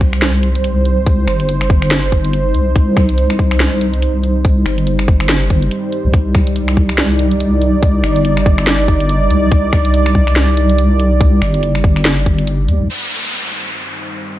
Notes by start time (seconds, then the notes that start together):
Already playing: C2 G3 D#4 C5
0.01 kick
0.13 finger snap
0.22 snare, closed hi-hat
0.43 closed hi-hat
0.55 closed hi-hat
0.64 closed hi-hat
0.85 closed hi-hat
1.06 kick, closed hi-hat
1.28 G1, finger snap
1.40 closed hi-hat
1.49 closed hi-hat
1.61 finger snap
1.70 kick
1.82 finger snap
1.91 snare, closed hi-hat
2.12 kick, closed hi-hat
2.25 closed hi-hat
2.33 closed hi-hat
2.54 C2, closed hi-hat
2.76 C2, kick, closed hi-hat
2.97 finger snap, kick
3.09 closed hi-hat
3.18 closed hi-hat
3.30 finger snap
3.39 kick
3.51 finger snap
3.60 snare, closed hi-hat
3.81 closed hi-hat
3.94 closed hi-hat
4.02 closed hi-hat
4.24 closed hi-hat
4.45 kick, closed hi-hat
4.66 G1, finger snap
4.78 closed hi-hat
4.87 closed hi-hat
4.99 finger snap
5.08 kick
5.20 finger snap
5.29 snare, closed hi-hat
5.50 G1, kick, closed hi-hat
5.62 closed hi-hat
5.71 closed hi-hat
5.92 closed hi-hat
6.05 C2
6.14 C2 D5, kick, closed hi-hat
6.35 finger snap, kick
6.47 closed hi-hat
6.56 closed hi-hat
6.68 finger snap
6.77 kick
6.89 finger snap
6.98 snare, closed hi-hat
7.19 closed hi-hat
7.31 closed hi-hat
7.40 closed hi-hat
7.62 closed hi-hat
7.83 kick, closed hi-hat
8.04 G1, finger snap
8.16 closed hi-hat
8.25 closed hi-hat
8.37 finger snap
8.46 kick
8.58 finger snap
8.67 snare, closed hi-hat
8.88 kick, closed hi-hat
9.00 closed hi-hat
9.09 closed hi-hat
9.30 C2, closed hi-hat
9.52 C2, kick, closed hi-hat
9.73 finger snap, kick
9.85 closed hi-hat
9.94 closed hi-hat
10.06 finger snap
10.15 kick
10.27 finger snap
10.36 snare, closed hi-hat
10.57 closed hi-hat
10.69 closed hi-hat
10.78 closed hi-hat
11.00 closed hi-hat
11.21 kick, closed hi-hat
11.42 G1, finger snap
11.54 closed hi-hat
11.63 closed hi-hat
11.75 finger snap
11.84 kick
11.96 finger snap
12.05 snare, closed hi-hat
12.26 kick, closed hi-hat
12.39 closed hi-hat
12.47 closed hi-hat
12.68 D#2, closed hi-hat
12.81 C2
12.90 G3 D#4 C5, downlifter